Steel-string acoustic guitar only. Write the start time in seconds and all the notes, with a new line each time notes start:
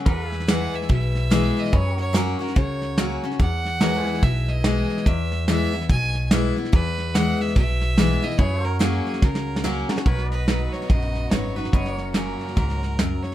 0.06 E2
0.47 E3 G#3 B3 E4
0.89 B2
1.30 E3 G#3 B3 E4
1.73 F#2
2.13 F#3 A#3 C#4 F#4
2.39 C#4 F#4
2.56 C#3
2.98 F#3 A#3 C#4 F#4
3.24 C#4 F#4
3.39 E2
3.81 E3 G#3 B3 E4
4.23 B2
4.64 E3 G#3 B3 E4
5.07 E2
5.48 E3 G#3 B3 E4
5.73 B3 E4
5.90 B2
6.31 E3 G#3 B3 E4
6.56 B3 E4
6.73 E2
7.15 E3 G#3 B3 E4
7.56 B2
7.98 E3 G#3 B3 E4
8.22 B3 E4
8.39 F#2
8.79 F#3 A#3 C#4 F#4
9.23 C#3
9.64 F#3 A#3 C#4 F#4
9.89 C#4 F#4
10.06 B2
10.48 F#3 B3 D#4 F#4
10.90 F#2
11.31 F#3 B3 D#4 F#4
11.56 D#4 F#4
11.74 F#2
12.15 F#3 A#3 C#4 F#4
12.57 G#2
12.99 F#2